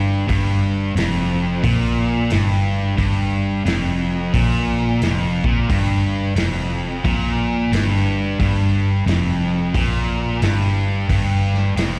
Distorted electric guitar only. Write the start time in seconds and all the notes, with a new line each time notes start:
Already playing: G2
0.28 G2
0.96 F2
1.63 A#2
2.31 G2
2.97 G2
3.65 F2
4.34 A#2
5.03 F2
5.44 A#2
5.68 G2
6.36 F2
7.04 A#2
7.72 G2
8.40 G2
9.06 F2
9.74 A#2
10.42 G2
11.09 G2
11.76 F2